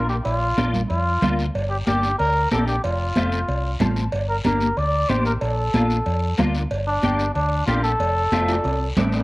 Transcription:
0.00 0.19 A#1 loud
0.00 0.16 A#3 medium
0.00 0.16 D4 medium
0.00 0.16 A#4 medium
0.09 0.16 G4 medium
0.09 short guiro medium
0.25 0.51 A#1 medium
0.25 0.70 F4 medium
0.25 cowbell loud
0.25 high conga soft
0.25 long guiro medium
0.57 0.83 A#1 medium
0.57 0.80 A#3 medium
0.57 0.80 D4 medium
0.57 0.81 F4 medium
0.57 cowbell medium
0.57 high conga medium
0.57 short guiro medium
0.74 low conga medium
0.74 short guiro medium
0.89 1.16 F2 medium
0.89 1.35 F4 medium
0.89 cowbell medium
0.89 high conga soft
0.89 long guiro medium
1.22 1.48 D2 medium
1.22 1.45 A#3 medium
1.22 1.45 D4 medium
1.22 1.46 F4 medium
1.22 cowbell medium
1.22 high conga medium
1.22 low conga medium
1.22 short guiro medium
1.39 short guiro medium
1.55 1.81 G1 medium
1.55 cowbell loud
1.55 high conga soft
1.55 long guiro medium
1.70 1.77 G4 medium
1.87 2.13 G1 medium
1.87 2.09 A#3 medium
1.87 2.10 D4 medium
1.87 2.17 G4 loud
1.87 2.10 G4 medium
1.87 cowbell medium
1.87 high conga medium
1.87 short guiro medium
2.03 short guiro medium
2.19 2.45 D2 medium
2.19 2.49 A#4 loud
2.19 cowbell medium
2.19 high conga soft
2.19 long guiro medium
2.51 2.78 A#1 loud
2.51 2.74 A#3 medium
2.51 2.74 D4 medium
2.51 2.74 G4 medium
2.51 2.66 A4 medium
2.51 cowbell medium
2.51 high conga medium
2.51 low timbale medium
2.51 short guiro medium
2.68 2.83 G4 medium
2.68 short guiro medium
2.84 3.10 F1 medium
2.84 3.77 F4 medium
2.84 cowbell loud
2.84 high conga soft
2.84 long guiro medium
3.16 3.42 F1 medium
3.16 3.39 A3 medium
3.16 3.39 C4 medium
3.16 3.39 F4 medium
3.16 cowbell medium
3.16 high conga medium
3.16 short guiro medium
3.32 short guiro medium
3.48 3.74 C2 loud
3.48 cowbell medium
3.48 high conga soft
3.48 long guiro medium
3.80 4.07 A1 medium
3.80 4.03 A3 medium
3.80 4.03 C4 medium
3.80 4.03 F4 medium
3.80 4.11 A5 medium
3.80 cowbell medium
3.80 high conga medium
3.80 low conga medium
3.80 short guiro medium
3.96 short guiro medium
4.12 4.39 G1 medium
4.12 cowbell loud
4.12 high conga soft
4.12 long guiro medium
4.29 4.36 A#4 medium
4.45 4.71 G1 medium
4.45 4.68 A#3 medium
4.45 4.68 D4 medium
4.45 4.68 G4 medium
4.45 4.79 A#4 medium
4.45 cowbell medium
4.45 high conga medium
4.45 short guiro medium
4.61 short guiro medium
4.77 5.03 D2 medium
4.77 5.11 D5 loud
4.77 cowbell medium
4.77 high conga soft
4.77 long guiro medium
5.09 5.36 A1 loud
5.09 5.32 A#3 medium
5.09 5.32 D4 medium
5.09 5.32 G4 medium
5.09 5.25 C5 medium
5.09 cowbell medium
5.09 high conga medium
5.09 short guiro medium
5.25 5.33 A#4 medium
5.25 short guiro medium
5.41 5.68 A#1 medium
5.41 6.34 A4 medium
5.41 cowbell loud
5.41 high conga soft
5.41 long guiro medium
5.74 6.00 A#1 medium
5.74 5.97 A#3 medium
5.74 5.97 D4 medium
5.74 5.97 F4 medium
5.74 cowbell medium
5.74 high conga medium
5.74 short guiro medium
5.90 short guiro medium
6.06 6.32 F2 loud
6.06 cowbell medium
6.06 high conga soft
6.06 long guiro medium
6.38 6.65 D2 loud
6.38 6.61 A#3 medium
6.38 6.61 D4 medium
6.38 6.62 F4 loud
6.38 cowbell medium
6.38 high conga medium
6.38 low conga medium
6.38 short guiro medium
6.55 short guiro medium
6.71 6.97 G1 medium
6.71 cowbell loud
6.71 high conga soft
6.71 long guiro medium
6.87 7.32 D4 medium
7.03 7.29 G1 loud
7.03 7.26 A#3 medium
7.03 7.26 D4 medium
7.03 7.26 G4 medium
7.03 cowbell medium
7.03 high conga medium
7.03 short guiro medium
7.19 short guiro medium
7.34 7.61 D2 medium
7.34 7.65 D4 medium
7.34 cowbell medium
7.34 high conga soft
7.34 long guiro medium
7.66 7.93 A#1 medium
7.66 7.90 A#3 medium
7.66 7.91 D4 medium
7.66 7.82 F4 medium
7.66 7.91 G4 medium
7.66 cowbell medium
7.66 high conga medium
7.66 low timbale medium
7.66 short guiro medium
7.83 8.93 A4 loud
7.83 short guiro medium
7.99 8.26 F1 medium
7.99 cowbell loud
7.99 high conga soft
7.99 long guiro medium
8.32 8.58 F1 medium
8.32 8.55 A3 medium
8.32 8.55 C4 medium
8.32 8.55 F4 medium
8.32 cowbell medium
8.32 high conga medium
8.32 high timbale medium
8.32 short guiro medium
8.48 high timbale medium
8.48 short guiro medium
8.64 8.90 C2 medium
8.64 cowbell medium
8.64 high conga soft
8.64 low timbale medium
8.64 long guiro medium
8.97 9.23 A1 loud
8.97 9.20 A3 medium
8.97 9.20 C4 medium
8.97 9.20 D4 loud
8.97 cowbell medium
8.97 high conga medium
8.97 low conga medium
8.97 low timbale medium
8.97 short guiro medium
9.12 low timbale medium
9.12 short guiro medium

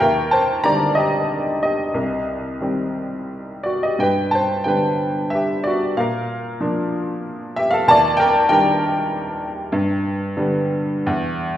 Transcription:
0.00 1.92 D#2 medium
0.00 0.31 A#4 medium
0.00 0.33 G5 medium
0.31 0.63 C5 medium
0.31 0.66 A5 medium
0.63 1.28 D3 soft
0.63 1.28 D#3 soft
0.63 1.28 G3 soft
0.63 0.96 D5 medium
0.63 0.98 A#5 loud
0.95 1.59 G4 medium
0.95 1.61 D#5 medium
1.63 2.26 G4 soft
1.63 2.25 D#5 medium
1.94 3.95 C2 medium
2.60 3.28 D#3 soft
2.60 3.28 G3 soft
2.60 3.28 C4 soft
3.63 3.82 F#4 soft
3.63 3.82 D5 medium
3.83 4.00 G4 soft
3.83 4.00 D#5 medium
3.99 5.93 G2 soft
3.99 4.33 B4 medium
3.99 4.35 G5 medium
4.31 4.65 C5 medium
4.31 4.67 A5 medium
4.64 5.30 D3 soft
4.64 5.30 G3 soft
4.64 5.30 B3 soft
4.64 5.29 B4 medium
4.64 5.33 G5 medium
5.30 5.65 E5 medium
5.35 5.64 G4 medium
5.64 5.96 F#4 medium
5.64 5.98 D5 medium
5.97 7.85 A#2 medium
5.97 6.59 A#4 medium
5.97 6.58 F5 medium
6.61 7.23 F3 soft
6.61 7.23 A#3 soft
6.61 7.24 D4 medium
7.56 7.73 G4 medium
7.56 7.73 E5 medium
7.71 7.88 A4 medium
7.71 7.88 F5 medium
7.87 9.69 D#2 medium
7.87 8.19 D5 medium
7.87 8.21 A5 loud
8.17 8.49 A#4 medium
8.17 8.48 G5 loud
8.49 9.09 D#3 medium
8.49 9.09 G3 soft
8.49 9.10 D4 medium
8.49 11.04 A#4 medium
8.49 11.03 G5 medium
9.72 11.03 G2 medium
10.37 11.05 D3 medium
10.37 11.05 G3 medium
10.37 11.05 B3 medium
11.07 11.57 E2 medium

